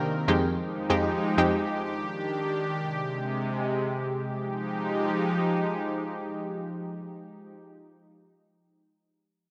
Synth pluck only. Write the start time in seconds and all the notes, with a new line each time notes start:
Already playing: C3 A#3 D4 D#4 G4
0.28 F2 G#3 C4 D#4 G4
0.90 F2 G#3 C4 D#4 G4
1.38 F2 G#3 C4 D#4 G4